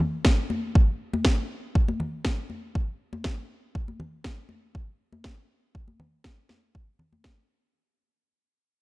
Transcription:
0, 0, Header, 1, 2, 480
1, 0, Start_track
1, 0, Tempo, 500000
1, 1676, Time_signature, 4, 2, 24, 8
1, 8460, End_track
2, 0, Start_track
2, 0, Title_t, "Drums"
2, 0, Note_on_c, 9, 64, 88
2, 94, Note_off_c, 9, 64, 0
2, 236, Note_on_c, 9, 38, 107
2, 243, Note_on_c, 9, 36, 96
2, 332, Note_off_c, 9, 38, 0
2, 339, Note_off_c, 9, 36, 0
2, 480, Note_on_c, 9, 63, 69
2, 576, Note_off_c, 9, 63, 0
2, 723, Note_on_c, 9, 36, 106
2, 819, Note_off_c, 9, 36, 0
2, 1089, Note_on_c, 9, 63, 85
2, 1185, Note_off_c, 9, 63, 0
2, 1196, Note_on_c, 9, 38, 109
2, 1203, Note_on_c, 9, 36, 89
2, 1292, Note_off_c, 9, 38, 0
2, 1299, Note_off_c, 9, 36, 0
2, 1683, Note_on_c, 9, 36, 104
2, 1779, Note_off_c, 9, 36, 0
2, 1809, Note_on_c, 9, 63, 84
2, 1905, Note_off_c, 9, 63, 0
2, 1918, Note_on_c, 9, 64, 78
2, 2014, Note_off_c, 9, 64, 0
2, 2156, Note_on_c, 9, 38, 102
2, 2163, Note_on_c, 9, 36, 92
2, 2252, Note_off_c, 9, 38, 0
2, 2259, Note_off_c, 9, 36, 0
2, 2397, Note_on_c, 9, 63, 59
2, 2493, Note_off_c, 9, 63, 0
2, 2642, Note_on_c, 9, 36, 101
2, 2738, Note_off_c, 9, 36, 0
2, 3003, Note_on_c, 9, 63, 83
2, 3099, Note_off_c, 9, 63, 0
2, 3113, Note_on_c, 9, 38, 102
2, 3121, Note_on_c, 9, 36, 93
2, 3209, Note_off_c, 9, 38, 0
2, 3217, Note_off_c, 9, 36, 0
2, 3601, Note_on_c, 9, 36, 104
2, 3697, Note_off_c, 9, 36, 0
2, 3726, Note_on_c, 9, 63, 75
2, 3822, Note_off_c, 9, 63, 0
2, 3837, Note_on_c, 9, 64, 87
2, 3933, Note_off_c, 9, 64, 0
2, 4074, Note_on_c, 9, 38, 106
2, 4080, Note_on_c, 9, 36, 91
2, 4170, Note_off_c, 9, 38, 0
2, 4176, Note_off_c, 9, 36, 0
2, 4309, Note_on_c, 9, 63, 60
2, 4405, Note_off_c, 9, 63, 0
2, 4559, Note_on_c, 9, 36, 98
2, 4655, Note_off_c, 9, 36, 0
2, 4920, Note_on_c, 9, 63, 75
2, 5016, Note_off_c, 9, 63, 0
2, 5032, Note_on_c, 9, 38, 102
2, 5039, Note_on_c, 9, 36, 87
2, 5128, Note_off_c, 9, 38, 0
2, 5135, Note_off_c, 9, 36, 0
2, 5519, Note_on_c, 9, 36, 104
2, 5615, Note_off_c, 9, 36, 0
2, 5641, Note_on_c, 9, 63, 69
2, 5737, Note_off_c, 9, 63, 0
2, 5756, Note_on_c, 9, 64, 85
2, 5852, Note_off_c, 9, 64, 0
2, 5993, Note_on_c, 9, 38, 106
2, 5999, Note_on_c, 9, 36, 90
2, 6089, Note_off_c, 9, 38, 0
2, 6095, Note_off_c, 9, 36, 0
2, 6233, Note_on_c, 9, 38, 57
2, 6241, Note_on_c, 9, 63, 61
2, 6329, Note_off_c, 9, 38, 0
2, 6337, Note_off_c, 9, 63, 0
2, 6479, Note_on_c, 9, 36, 105
2, 6575, Note_off_c, 9, 36, 0
2, 6712, Note_on_c, 9, 64, 68
2, 6808, Note_off_c, 9, 64, 0
2, 6840, Note_on_c, 9, 63, 78
2, 6936, Note_off_c, 9, 63, 0
2, 6952, Note_on_c, 9, 38, 107
2, 6959, Note_on_c, 9, 36, 88
2, 7048, Note_off_c, 9, 38, 0
2, 7055, Note_off_c, 9, 36, 0
2, 8460, End_track
0, 0, End_of_file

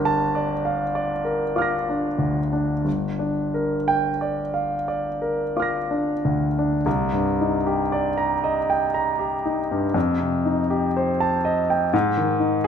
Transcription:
0, 0, Header, 1, 2, 480
1, 0, Start_track
1, 0, Tempo, 1197605
1, 619, Tempo, 1310044
1, 1099, Time_signature, 3, 2, 24, 8
1, 1099, Tempo, 1354402
1, 2059, Tempo, 1295896
1, 2539, Tempo, 1043478
1, 3499, Tempo, 1006711
1, 4459, Tempo, 969305
1, 5306, End_track
2, 0, Start_track
2, 0, Title_t, "Grand piano"
2, 0, Program_c, 0, 0
2, 0, Control_c, 0, 64, 127
2, 0, Note_on_c, 0, 31, 67
2, 0, Note_on_c, 0, 62, 49
2, 0, Note_on_c, 0, 70, 51
2, 21, Note_on_c, 0, 81, 71
2, 88, Note_off_c, 0, 70, 0
2, 141, Note_on_c, 0, 74, 52
2, 204, Note_off_c, 0, 81, 0
2, 261, Note_on_c, 0, 77, 50
2, 326, Note_off_c, 0, 74, 0
2, 381, Note_on_c, 0, 74, 52
2, 450, Note_off_c, 0, 77, 0
2, 500, Note_on_c, 0, 70, 46
2, 574, Note_off_c, 0, 74, 0
2, 625, Note_on_c, 0, 65, 49
2, 625, Note_on_c, 0, 86, 41
2, 633, Note_on_c, 0, 89, 42
2, 646, Note_on_c, 0, 94, 36
2, 691, Note_off_c, 0, 70, 0
2, 746, Note_off_c, 0, 62, 0
2, 746, Note_on_c, 0, 62, 43
2, 809, Note_off_c, 0, 65, 0
2, 854, Note_on_c, 0, 38, 44
2, 931, Note_off_c, 0, 62, 0
2, 979, Note_on_c, 0, 62, 45
2, 1049, Note_off_c, 0, 38, 0
2, 1086, Note_off_c, 0, 31, 0
2, 1087, Note_off_c, 0, 86, 0
2, 1091, Note_off_c, 0, 89, 0
2, 1097, Note_on_c, 0, 31, 51
2, 1098, Note_off_c, 0, 94, 0
2, 1102, Note_off_c, 0, 62, 0
2, 1107, Control_c, 0, 64, 0
2, 1173, Control_c, 0, 64, 127
2, 1218, Note_on_c, 0, 62, 42
2, 1343, Note_on_c, 0, 70, 45
2, 1414, Note_off_c, 0, 62, 0
2, 1462, Note_on_c, 0, 79, 67
2, 1534, Note_off_c, 0, 70, 0
2, 1580, Note_on_c, 0, 74, 46
2, 1651, Note_off_c, 0, 79, 0
2, 1696, Note_on_c, 0, 77, 46
2, 1770, Note_off_c, 0, 74, 0
2, 1817, Note_on_c, 0, 74, 47
2, 1888, Note_off_c, 0, 77, 0
2, 1936, Note_on_c, 0, 70, 44
2, 2010, Note_off_c, 0, 74, 0
2, 2060, Note_on_c, 0, 65, 46
2, 2060, Note_on_c, 0, 86, 36
2, 2071, Note_on_c, 0, 89, 36
2, 2081, Note_on_c, 0, 94, 38
2, 2134, Note_off_c, 0, 70, 0
2, 2187, Note_on_c, 0, 62, 42
2, 2263, Note_off_c, 0, 65, 0
2, 2314, Note_on_c, 0, 38, 43
2, 2388, Note_off_c, 0, 62, 0
2, 2438, Note_on_c, 0, 62, 45
2, 2498, Note_off_c, 0, 38, 0
2, 2522, Note_off_c, 0, 31, 0
2, 2524, Note_off_c, 0, 86, 0
2, 2530, Note_off_c, 0, 89, 0
2, 2535, Note_off_c, 0, 94, 0
2, 2539, Note_on_c, 0, 36, 64
2, 2541, Note_off_c, 0, 62, 0
2, 2545, Control_c, 0, 64, 0
2, 2635, Control_c, 0, 64, 127
2, 2662, Note_on_c, 0, 43, 44
2, 2791, Note_on_c, 0, 63, 45
2, 2854, Note_off_c, 0, 43, 0
2, 2910, Note_on_c, 0, 67, 52
2, 2978, Note_off_c, 0, 63, 0
2, 3028, Note_on_c, 0, 74, 54
2, 3097, Note_off_c, 0, 67, 0
2, 3144, Note_on_c, 0, 82, 58
2, 3216, Note_off_c, 0, 74, 0
2, 3266, Note_on_c, 0, 75, 58
2, 3334, Note_off_c, 0, 82, 0
2, 3384, Note_on_c, 0, 79, 54
2, 3454, Note_off_c, 0, 75, 0
2, 3498, Note_on_c, 0, 82, 55
2, 3573, Note_off_c, 0, 79, 0
2, 3615, Note_on_c, 0, 67, 52
2, 3690, Note_off_c, 0, 82, 0
2, 3741, Note_on_c, 0, 63, 47
2, 3808, Note_off_c, 0, 67, 0
2, 3865, Note_on_c, 0, 43, 47
2, 3931, Note_off_c, 0, 63, 0
2, 3959, Note_off_c, 0, 36, 0
2, 3975, Note_on_c, 0, 41, 61
2, 3982, Note_off_c, 0, 43, 0
2, 3985, Control_c, 0, 64, 0
2, 4062, Control_c, 0, 64, 127
2, 4096, Note_on_c, 0, 48, 46
2, 4218, Note_on_c, 0, 63, 48
2, 4290, Note_off_c, 0, 48, 0
2, 4337, Note_on_c, 0, 67, 54
2, 4410, Note_off_c, 0, 63, 0
2, 4462, Note_on_c, 0, 72, 54
2, 4530, Note_off_c, 0, 67, 0
2, 4580, Note_on_c, 0, 81, 66
2, 4654, Note_off_c, 0, 72, 0
2, 4701, Note_on_c, 0, 75, 55
2, 4773, Note_off_c, 0, 81, 0
2, 4826, Note_on_c, 0, 79, 53
2, 4893, Note_off_c, 0, 75, 0
2, 4920, Note_off_c, 0, 41, 0
2, 4941, Note_on_c, 0, 44, 69
2, 4944, Note_off_c, 0, 79, 0
2, 4949, Control_c, 0, 64, 0
2, 5022, Control_c, 0, 64, 127
2, 5060, Note_on_c, 0, 51, 47
2, 5171, Note_on_c, 0, 63, 50
2, 5251, Note_off_c, 0, 51, 0
2, 5306, Note_off_c, 0, 44, 0
2, 5306, Note_off_c, 0, 63, 0
2, 5306, End_track
0, 0, End_of_file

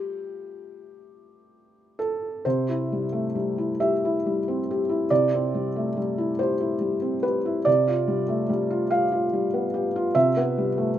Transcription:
0, 0, Header, 1, 2, 480
1, 0, Start_track
1, 0, Key_signature, 0, "major"
1, 0, Tempo, 928793
1, 1262, Tempo, 886263
1, 1263, Time_signature, 6, 3, 24, 8
1, 2702, Tempo, 854701
1, 4142, Tempo, 826446
1, 6072, End_track
2, 0, Start_track
2, 0, Title_t, "Felt piano"
2, 0, Program_c, 0, 0
2, 0, Control_c, 0, 64, 127
2, 0, Note_on_c, 0, 55, 36
2, 0, Note_on_c, 0, 57, 35
2, 0, Note_on_c, 0, 67, 55
2, 1020, Note_off_c, 0, 67, 0
2, 1028, Note_on_c, 0, 69, 59
2, 1245, Note_off_c, 0, 55, 0
2, 1245, Note_off_c, 0, 57, 0
2, 1266, Note_off_c, 0, 69, 0
2, 1266, Note_on_c, 0, 72, 60
2, 1271, Note_on_c, 0, 48, 48
2, 1274, Control_c, 0, 64, 0
2, 1377, Control_c, 0, 64, 127
2, 1396, Note_on_c, 0, 64, 37
2, 1523, Note_on_c, 0, 55, 37
2, 1585, Note_off_c, 0, 64, 0
2, 1632, Note_on_c, 0, 57, 33
2, 1708, Note_off_c, 0, 55, 0
2, 1750, Note_off_c, 0, 57, 0
2, 1755, Note_on_c, 0, 55, 34
2, 1879, Note_on_c, 0, 64, 35
2, 1944, Note_off_c, 0, 55, 0
2, 1991, Note_off_c, 0, 72, 0
2, 1998, Note_on_c, 0, 76, 59
2, 1999, Note_on_c, 0, 67, 40
2, 2067, Note_off_c, 0, 64, 0
2, 2132, Note_on_c, 0, 64, 37
2, 2187, Note_off_c, 0, 67, 0
2, 2248, Note_on_c, 0, 55, 35
2, 2313, Note_off_c, 0, 64, 0
2, 2365, Note_on_c, 0, 60, 33
2, 2430, Note_off_c, 0, 55, 0
2, 2488, Note_on_c, 0, 67, 42
2, 2547, Note_off_c, 0, 60, 0
2, 2590, Note_on_c, 0, 64, 35
2, 2666, Note_off_c, 0, 67, 0
2, 2685, Note_off_c, 0, 48, 0
2, 2704, Note_on_c, 0, 74, 73
2, 2705, Note_on_c, 0, 48, 49
2, 2707, Note_off_c, 0, 76, 0
2, 2711, Control_c, 0, 64, 0
2, 2777, Note_off_c, 0, 64, 0
2, 2792, Control_c, 0, 64, 127
2, 2836, Note_on_c, 0, 60, 40
2, 2953, Note_on_c, 0, 55, 34
2, 3023, Note_off_c, 0, 60, 0
2, 3073, Note_on_c, 0, 57, 35
2, 3142, Note_off_c, 0, 55, 0
2, 3188, Note_on_c, 0, 55, 39
2, 3190, Note_off_c, 0, 57, 0
2, 3309, Note_on_c, 0, 64, 38
2, 3381, Note_off_c, 0, 55, 0
2, 3426, Note_on_c, 0, 72, 60
2, 3429, Note_off_c, 0, 74, 0
2, 3431, Note_on_c, 0, 67, 42
2, 3502, Note_off_c, 0, 64, 0
2, 3546, Note_on_c, 0, 64, 38
2, 3623, Note_off_c, 0, 67, 0
2, 3660, Note_on_c, 0, 55, 35
2, 3741, Note_off_c, 0, 64, 0
2, 3778, Note_on_c, 0, 60, 34
2, 3856, Note_off_c, 0, 55, 0
2, 3897, Note_on_c, 0, 71, 59
2, 3899, Note_on_c, 0, 67, 41
2, 3907, Note_off_c, 0, 72, 0
2, 3973, Note_off_c, 0, 60, 0
2, 4024, Note_on_c, 0, 64, 40
2, 4092, Note_off_c, 0, 67, 0
2, 4122, Note_off_c, 0, 48, 0
2, 4133, Note_on_c, 0, 74, 78
2, 4137, Note_off_c, 0, 71, 0
2, 4141, Note_on_c, 0, 48, 52
2, 4142, Note_off_c, 0, 64, 0
2, 4154, Control_c, 0, 64, 0
2, 4252, Control_c, 0, 64, 127
2, 4265, Note_on_c, 0, 65, 44
2, 4382, Note_on_c, 0, 55, 41
2, 4459, Note_off_c, 0, 65, 0
2, 4503, Note_on_c, 0, 57, 38
2, 4578, Note_off_c, 0, 55, 0
2, 4624, Note_on_c, 0, 55, 42
2, 4626, Note_off_c, 0, 57, 0
2, 4746, Note_on_c, 0, 65, 43
2, 4819, Note_off_c, 0, 55, 0
2, 4862, Note_on_c, 0, 77, 69
2, 4864, Note_off_c, 0, 74, 0
2, 4867, Note_on_c, 0, 67, 43
2, 4939, Note_off_c, 0, 65, 0
2, 4986, Note_on_c, 0, 65, 39
2, 5060, Note_off_c, 0, 67, 0
2, 5110, Note_on_c, 0, 55, 39
2, 5178, Note_off_c, 0, 65, 0
2, 5229, Note_on_c, 0, 59, 37
2, 5300, Note_off_c, 0, 55, 0
2, 5346, Note_on_c, 0, 67, 39
2, 5420, Note_off_c, 0, 59, 0
2, 5474, Note_on_c, 0, 65, 48
2, 5538, Note_off_c, 0, 67, 0
2, 5562, Note_off_c, 0, 48, 0
2, 5583, Note_off_c, 0, 77, 0
2, 5584, Note_on_c, 0, 76, 76
2, 5585, Note_on_c, 0, 48, 53
2, 5595, Control_c, 0, 64, 0
2, 5662, Note_off_c, 0, 65, 0
2, 5685, Control_c, 0, 64, 127
2, 5713, Note_on_c, 0, 59, 41
2, 5836, Note_on_c, 0, 55, 40
2, 5900, Note_off_c, 0, 59, 0
2, 5949, Note_on_c, 0, 57, 38
2, 6020, Note_off_c, 0, 55, 0
2, 6065, Note_off_c, 0, 57, 0
2, 6072, Note_off_c, 0, 48, 0
2, 6072, Note_off_c, 0, 76, 0
2, 6072, End_track
0, 0, End_of_file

